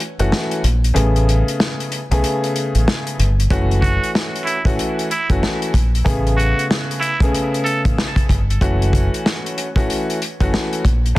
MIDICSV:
0, 0, Header, 1, 5, 480
1, 0, Start_track
1, 0, Key_signature, 3, "minor"
1, 0, Tempo, 638298
1, 715, Time_signature, 4, 2, 24, 8
1, 8414, End_track
2, 0, Start_track
2, 0, Title_t, "Muted trumpet"
2, 0, Program_c, 0, 59
2, 2869, Note_on_c, 0, 66, 77
2, 3088, Note_off_c, 0, 66, 0
2, 3343, Note_on_c, 0, 64, 79
2, 3481, Note_off_c, 0, 64, 0
2, 3845, Note_on_c, 0, 64, 81
2, 3973, Note_off_c, 0, 64, 0
2, 4789, Note_on_c, 0, 66, 84
2, 5008, Note_off_c, 0, 66, 0
2, 5266, Note_on_c, 0, 64, 85
2, 5403, Note_off_c, 0, 64, 0
2, 5747, Note_on_c, 0, 69, 80
2, 5883, Note_off_c, 0, 69, 0
2, 8414, End_track
3, 0, Start_track
3, 0, Title_t, "Upright piano"
3, 0, Program_c, 1, 0
3, 145, Note_on_c, 1, 52, 94
3, 146, Note_on_c, 1, 57, 85
3, 148, Note_on_c, 1, 61, 83
3, 150, Note_on_c, 1, 66, 104
3, 454, Note_off_c, 1, 52, 0
3, 455, Note_off_c, 1, 57, 0
3, 456, Note_off_c, 1, 61, 0
3, 457, Note_off_c, 1, 66, 0
3, 705, Note_on_c, 1, 49, 91
3, 707, Note_on_c, 1, 57, 81
3, 709, Note_on_c, 1, 59, 82
3, 711, Note_on_c, 1, 68, 94
3, 1495, Note_off_c, 1, 49, 0
3, 1496, Note_off_c, 1, 57, 0
3, 1497, Note_off_c, 1, 59, 0
3, 1498, Note_off_c, 1, 68, 0
3, 1587, Note_on_c, 1, 49, 92
3, 1589, Note_on_c, 1, 57, 79
3, 1591, Note_on_c, 1, 59, 79
3, 1593, Note_on_c, 1, 68, 104
3, 2451, Note_off_c, 1, 49, 0
3, 2452, Note_off_c, 1, 57, 0
3, 2453, Note_off_c, 1, 59, 0
3, 2453, Note_off_c, 1, 68, 0
3, 2637, Note_on_c, 1, 52, 91
3, 2639, Note_on_c, 1, 57, 86
3, 2640, Note_on_c, 1, 61, 82
3, 2642, Note_on_c, 1, 66, 106
3, 3421, Note_off_c, 1, 52, 0
3, 3422, Note_off_c, 1, 57, 0
3, 3423, Note_off_c, 1, 61, 0
3, 3423, Note_off_c, 1, 66, 0
3, 3499, Note_on_c, 1, 52, 90
3, 3501, Note_on_c, 1, 57, 83
3, 3502, Note_on_c, 1, 61, 85
3, 3504, Note_on_c, 1, 66, 101
3, 3811, Note_off_c, 1, 52, 0
3, 3812, Note_off_c, 1, 57, 0
3, 3813, Note_off_c, 1, 61, 0
3, 3814, Note_off_c, 1, 66, 0
3, 3985, Note_on_c, 1, 52, 93
3, 3987, Note_on_c, 1, 57, 84
3, 3989, Note_on_c, 1, 61, 80
3, 3990, Note_on_c, 1, 66, 103
3, 4294, Note_off_c, 1, 52, 0
3, 4295, Note_off_c, 1, 57, 0
3, 4296, Note_off_c, 1, 61, 0
3, 4297, Note_off_c, 1, 66, 0
3, 4545, Note_on_c, 1, 49, 91
3, 4547, Note_on_c, 1, 57, 79
3, 4548, Note_on_c, 1, 59, 80
3, 4550, Note_on_c, 1, 68, 94
3, 5335, Note_off_c, 1, 49, 0
3, 5336, Note_off_c, 1, 57, 0
3, 5336, Note_off_c, 1, 59, 0
3, 5338, Note_off_c, 1, 68, 0
3, 5426, Note_on_c, 1, 49, 95
3, 5429, Note_on_c, 1, 57, 80
3, 5430, Note_on_c, 1, 59, 82
3, 5433, Note_on_c, 1, 68, 101
3, 6290, Note_off_c, 1, 49, 0
3, 6291, Note_off_c, 1, 57, 0
3, 6292, Note_off_c, 1, 59, 0
3, 6293, Note_off_c, 1, 68, 0
3, 6476, Note_on_c, 1, 52, 91
3, 6478, Note_on_c, 1, 57, 86
3, 6480, Note_on_c, 1, 61, 87
3, 6482, Note_on_c, 1, 66, 107
3, 7260, Note_off_c, 1, 52, 0
3, 7262, Note_off_c, 1, 57, 0
3, 7262, Note_off_c, 1, 61, 0
3, 7263, Note_off_c, 1, 66, 0
3, 7339, Note_on_c, 1, 52, 89
3, 7341, Note_on_c, 1, 57, 86
3, 7342, Note_on_c, 1, 61, 88
3, 7344, Note_on_c, 1, 66, 103
3, 7651, Note_off_c, 1, 52, 0
3, 7652, Note_off_c, 1, 57, 0
3, 7653, Note_off_c, 1, 61, 0
3, 7654, Note_off_c, 1, 66, 0
3, 7825, Note_on_c, 1, 52, 96
3, 7828, Note_on_c, 1, 57, 85
3, 7830, Note_on_c, 1, 61, 82
3, 7831, Note_on_c, 1, 66, 100
3, 8135, Note_off_c, 1, 52, 0
3, 8136, Note_off_c, 1, 57, 0
3, 8137, Note_off_c, 1, 61, 0
3, 8138, Note_off_c, 1, 66, 0
3, 8385, Note_on_c, 1, 49, 91
3, 8387, Note_on_c, 1, 57, 82
3, 8389, Note_on_c, 1, 59, 83
3, 8391, Note_on_c, 1, 68, 99
3, 8414, Note_off_c, 1, 49, 0
3, 8414, Note_off_c, 1, 57, 0
3, 8414, Note_off_c, 1, 59, 0
3, 8414, Note_off_c, 1, 68, 0
3, 8414, End_track
4, 0, Start_track
4, 0, Title_t, "Fingered electric bass"
4, 0, Program_c, 2, 33
4, 147, Note_on_c, 2, 30, 90
4, 228, Note_off_c, 2, 30, 0
4, 480, Note_on_c, 2, 34, 93
4, 693, Note_off_c, 2, 34, 0
4, 719, Note_on_c, 2, 33, 108
4, 1064, Note_off_c, 2, 33, 0
4, 1587, Note_on_c, 2, 35, 85
4, 1668, Note_off_c, 2, 35, 0
4, 2066, Note_on_c, 2, 33, 84
4, 2148, Note_off_c, 2, 33, 0
4, 2400, Note_on_c, 2, 31, 90
4, 2613, Note_off_c, 2, 31, 0
4, 2639, Note_on_c, 2, 30, 104
4, 2984, Note_off_c, 2, 30, 0
4, 3500, Note_on_c, 2, 33, 86
4, 3584, Note_off_c, 2, 33, 0
4, 3986, Note_on_c, 2, 30, 91
4, 4068, Note_off_c, 2, 30, 0
4, 4319, Note_on_c, 2, 34, 93
4, 4532, Note_off_c, 2, 34, 0
4, 4558, Note_on_c, 2, 33, 102
4, 4903, Note_off_c, 2, 33, 0
4, 5420, Note_on_c, 2, 35, 84
4, 5504, Note_off_c, 2, 35, 0
4, 5906, Note_on_c, 2, 33, 84
4, 5988, Note_off_c, 2, 33, 0
4, 6239, Note_on_c, 2, 31, 93
4, 6452, Note_off_c, 2, 31, 0
4, 6479, Note_on_c, 2, 30, 108
4, 6824, Note_off_c, 2, 30, 0
4, 7340, Note_on_c, 2, 33, 88
4, 7425, Note_off_c, 2, 33, 0
4, 7827, Note_on_c, 2, 30, 93
4, 7908, Note_off_c, 2, 30, 0
4, 8159, Note_on_c, 2, 34, 94
4, 8373, Note_off_c, 2, 34, 0
4, 8414, End_track
5, 0, Start_track
5, 0, Title_t, "Drums"
5, 2, Note_on_c, 9, 42, 72
5, 77, Note_off_c, 9, 42, 0
5, 146, Note_on_c, 9, 42, 56
5, 222, Note_off_c, 9, 42, 0
5, 243, Note_on_c, 9, 38, 102
5, 318, Note_off_c, 9, 38, 0
5, 387, Note_on_c, 9, 42, 56
5, 462, Note_off_c, 9, 42, 0
5, 482, Note_on_c, 9, 42, 81
5, 557, Note_off_c, 9, 42, 0
5, 634, Note_on_c, 9, 42, 52
5, 710, Note_off_c, 9, 42, 0
5, 721, Note_on_c, 9, 42, 98
5, 796, Note_off_c, 9, 42, 0
5, 872, Note_on_c, 9, 42, 47
5, 947, Note_off_c, 9, 42, 0
5, 969, Note_on_c, 9, 42, 70
5, 1044, Note_off_c, 9, 42, 0
5, 1115, Note_on_c, 9, 42, 54
5, 1190, Note_off_c, 9, 42, 0
5, 1203, Note_on_c, 9, 38, 107
5, 1278, Note_off_c, 9, 38, 0
5, 1356, Note_on_c, 9, 42, 50
5, 1432, Note_off_c, 9, 42, 0
5, 1442, Note_on_c, 9, 42, 74
5, 1518, Note_off_c, 9, 42, 0
5, 1591, Note_on_c, 9, 42, 57
5, 1666, Note_off_c, 9, 42, 0
5, 1684, Note_on_c, 9, 42, 91
5, 1759, Note_off_c, 9, 42, 0
5, 1833, Note_on_c, 9, 42, 54
5, 1908, Note_off_c, 9, 42, 0
5, 1923, Note_on_c, 9, 42, 69
5, 1998, Note_off_c, 9, 42, 0
5, 2067, Note_on_c, 9, 42, 57
5, 2142, Note_off_c, 9, 42, 0
5, 2164, Note_on_c, 9, 38, 105
5, 2239, Note_off_c, 9, 38, 0
5, 2307, Note_on_c, 9, 42, 57
5, 2382, Note_off_c, 9, 42, 0
5, 2403, Note_on_c, 9, 42, 82
5, 2478, Note_off_c, 9, 42, 0
5, 2555, Note_on_c, 9, 42, 51
5, 2630, Note_off_c, 9, 42, 0
5, 2636, Note_on_c, 9, 36, 122
5, 2641, Note_on_c, 9, 42, 94
5, 2711, Note_off_c, 9, 36, 0
5, 2716, Note_off_c, 9, 42, 0
5, 2792, Note_on_c, 9, 42, 46
5, 2868, Note_off_c, 9, 42, 0
5, 2875, Note_on_c, 9, 36, 87
5, 2889, Note_on_c, 9, 42, 69
5, 2951, Note_off_c, 9, 36, 0
5, 2964, Note_off_c, 9, 42, 0
5, 3035, Note_on_c, 9, 42, 55
5, 3110, Note_off_c, 9, 42, 0
5, 3122, Note_on_c, 9, 38, 107
5, 3198, Note_off_c, 9, 38, 0
5, 3276, Note_on_c, 9, 42, 51
5, 3351, Note_off_c, 9, 42, 0
5, 3362, Note_on_c, 9, 42, 73
5, 3437, Note_off_c, 9, 42, 0
5, 3497, Note_on_c, 9, 36, 99
5, 3511, Note_on_c, 9, 42, 56
5, 3573, Note_off_c, 9, 36, 0
5, 3586, Note_off_c, 9, 42, 0
5, 3603, Note_on_c, 9, 42, 93
5, 3678, Note_off_c, 9, 42, 0
5, 3753, Note_on_c, 9, 42, 57
5, 3828, Note_off_c, 9, 42, 0
5, 3843, Note_on_c, 9, 42, 69
5, 3918, Note_off_c, 9, 42, 0
5, 3983, Note_on_c, 9, 36, 97
5, 3987, Note_on_c, 9, 42, 57
5, 4059, Note_off_c, 9, 36, 0
5, 4062, Note_off_c, 9, 42, 0
5, 4084, Note_on_c, 9, 38, 104
5, 4159, Note_off_c, 9, 38, 0
5, 4227, Note_on_c, 9, 42, 57
5, 4302, Note_off_c, 9, 42, 0
5, 4316, Note_on_c, 9, 36, 92
5, 4323, Note_on_c, 9, 42, 81
5, 4391, Note_off_c, 9, 36, 0
5, 4398, Note_off_c, 9, 42, 0
5, 4474, Note_on_c, 9, 42, 52
5, 4550, Note_off_c, 9, 42, 0
5, 4556, Note_on_c, 9, 36, 118
5, 4562, Note_on_c, 9, 42, 98
5, 4631, Note_off_c, 9, 36, 0
5, 4637, Note_off_c, 9, 42, 0
5, 4713, Note_on_c, 9, 42, 48
5, 4788, Note_off_c, 9, 42, 0
5, 4809, Note_on_c, 9, 42, 72
5, 4884, Note_off_c, 9, 42, 0
5, 4956, Note_on_c, 9, 42, 56
5, 5031, Note_off_c, 9, 42, 0
5, 5043, Note_on_c, 9, 38, 104
5, 5118, Note_off_c, 9, 38, 0
5, 5196, Note_on_c, 9, 42, 52
5, 5271, Note_off_c, 9, 42, 0
5, 5283, Note_on_c, 9, 42, 72
5, 5358, Note_off_c, 9, 42, 0
5, 5418, Note_on_c, 9, 36, 100
5, 5431, Note_on_c, 9, 42, 57
5, 5493, Note_off_c, 9, 36, 0
5, 5506, Note_off_c, 9, 42, 0
5, 5524, Note_on_c, 9, 42, 89
5, 5599, Note_off_c, 9, 42, 0
5, 5673, Note_on_c, 9, 42, 54
5, 5748, Note_off_c, 9, 42, 0
5, 5763, Note_on_c, 9, 42, 70
5, 5838, Note_off_c, 9, 42, 0
5, 5904, Note_on_c, 9, 36, 101
5, 5907, Note_on_c, 9, 42, 58
5, 5979, Note_off_c, 9, 36, 0
5, 5983, Note_off_c, 9, 42, 0
5, 6004, Note_on_c, 9, 38, 102
5, 6079, Note_off_c, 9, 38, 0
5, 6137, Note_on_c, 9, 36, 97
5, 6147, Note_on_c, 9, 42, 58
5, 6212, Note_off_c, 9, 36, 0
5, 6222, Note_off_c, 9, 42, 0
5, 6236, Note_on_c, 9, 36, 94
5, 6243, Note_on_c, 9, 42, 84
5, 6312, Note_off_c, 9, 36, 0
5, 6318, Note_off_c, 9, 42, 0
5, 6395, Note_on_c, 9, 42, 51
5, 6470, Note_off_c, 9, 42, 0
5, 6476, Note_on_c, 9, 36, 117
5, 6482, Note_on_c, 9, 42, 98
5, 6551, Note_off_c, 9, 36, 0
5, 6557, Note_off_c, 9, 42, 0
5, 6633, Note_on_c, 9, 42, 45
5, 6708, Note_off_c, 9, 42, 0
5, 6716, Note_on_c, 9, 36, 87
5, 6729, Note_on_c, 9, 42, 70
5, 6791, Note_off_c, 9, 36, 0
5, 6804, Note_off_c, 9, 42, 0
5, 6875, Note_on_c, 9, 42, 57
5, 6950, Note_off_c, 9, 42, 0
5, 6963, Note_on_c, 9, 38, 105
5, 7038, Note_off_c, 9, 38, 0
5, 7116, Note_on_c, 9, 42, 52
5, 7192, Note_off_c, 9, 42, 0
5, 7203, Note_on_c, 9, 42, 75
5, 7278, Note_off_c, 9, 42, 0
5, 7338, Note_on_c, 9, 36, 99
5, 7351, Note_on_c, 9, 42, 56
5, 7413, Note_off_c, 9, 36, 0
5, 7427, Note_off_c, 9, 42, 0
5, 7444, Note_on_c, 9, 42, 92
5, 7520, Note_off_c, 9, 42, 0
5, 7594, Note_on_c, 9, 42, 56
5, 7669, Note_off_c, 9, 42, 0
5, 7684, Note_on_c, 9, 42, 73
5, 7759, Note_off_c, 9, 42, 0
5, 7824, Note_on_c, 9, 36, 100
5, 7828, Note_on_c, 9, 42, 58
5, 7900, Note_off_c, 9, 36, 0
5, 7903, Note_off_c, 9, 42, 0
5, 7925, Note_on_c, 9, 38, 105
5, 8000, Note_off_c, 9, 38, 0
5, 8067, Note_on_c, 9, 42, 57
5, 8142, Note_off_c, 9, 42, 0
5, 8157, Note_on_c, 9, 36, 92
5, 8163, Note_on_c, 9, 42, 80
5, 8232, Note_off_c, 9, 36, 0
5, 8238, Note_off_c, 9, 42, 0
5, 8315, Note_on_c, 9, 42, 54
5, 8390, Note_off_c, 9, 42, 0
5, 8414, End_track
0, 0, End_of_file